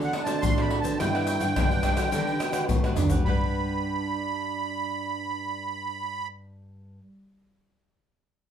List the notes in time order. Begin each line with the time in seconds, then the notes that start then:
Already playing: D3 A3 C4 D4 F#4 A4 C5 D5
0.02 F#5, pandeiro, shaker
0.13 muted cavaquinho stroke, pandeiro, tamborim
0.24 A3 C4 C5 D5 A5, pandeiro, tamborim, shaker
0.28 F#4 A4
0.42 A2 C6, pandeiro, shaker, surdo
0.57 A3 C4 F#4 A4 C5 D5 B5, pandeiro, tamborim, shaker
0.70 F#4 A4 C5 D5, pandeiro
0.80 D3 D4 F#4 B4 C5 D5 A5, pandeiro, shaker
0.85 A4
0.99 G2 G3 D4 E4 G4 B4 F#5 G5, pandeiro, tamborim, shaker, surdo
1.14 D4 G4 B4 F#5, pandeiro, tamborim, shaker
1.27 muted cavaquinho stroke, pandeiro, shaker
1.40 G2 G4 B4 F#5, pandeiro, shaker
1.49 E4
1.56 G2 D3 D4 F#4 G4 B4 F#5, pandeiro, tamborim, shaker, surdo
1.71 G4 B4 F#5, pandeiro, shaker
1.83 D4 G4 B4 F#5, pandeiro, tamborim, shaker, surdo
1.97 D3 D4 F#4 G4 B4 F#5, pandeiro, tamborim, shaker
2.12 D3 G3 D4 G4 B4 F#5, pandeiro, shaker, surdo
2.27 pandeiro, shaker
2.34 G4
2.40 F#4, muted cavaquinho stroke, pandeiro, tamborim, shaker
2.52 D4 F#4 G4 B4 F#5, pandeiro, tamborim, shaker
2.68 A2 D3 B3, pandeiro, shaker, surdo
2.83 D4 F#4 G4 B4 F#5, pandeiro, tamborim, shaker
2.96 G2 D4 G4 B4 F#5, surdo, pandeiro, shaker
3.09 D4 F#4 G4 B4 F#5, pandeiro, shaker, surdo
3.24 G2 G3 D4 G4 B5, surdo
3.28 B4 F#5